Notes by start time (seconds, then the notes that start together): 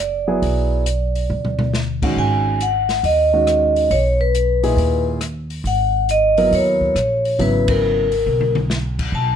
Already playing: F#1 D5
0.27 F#3 B3 E4 G#4
0.42 B1, open hi-hat
0.86 closed hi-hat
1.15 open hi-hat
1.30 D2, mid tom
1.45 mid tom
1.59 mid tom
1.73 snare
2.02 D#3 G#3 C#4 F#4, kick, crash
2.16 G#1 G#5
2.61 F#5, closed hi-hat
2.89 snare, open hi-hat
3.03 D#2 D#5, open hi-hat
3.33 D#3 G#3 C#4 F#4
3.47 cross-stick, closed hi-hat
3.76 open hi-hat
3.91 B1 C#5, open hi-hat
4.21 B4
4.35 closed hi-hat
4.63 A#2 D#4 E4 G#4, open hi-hat
4.76 D#2, open hi-hat
5.21 cross-stick, closed hi-hat
5.50 open hi-hat
5.64 G#1 F#5, open hi-hat
6.09 D#5, closed hi-hat
6.38 F#3 B3 E4 A#4, open hi-hat
6.51 D#2 C#5, open hi-hat
6.81 kick
6.95 A#1, cross-stick, closed hi-hat
7.25 open hi-hat
7.39 G#1 C#3 F#3 B3 E4 B4, open hi-hat
7.68 A#4, kick, ride
8.12 open hi-hat
8.26 B1, high tom
8.41 high tom
8.55 high tom
8.70 snare
8.99 kick, crash
9.12 B1 A5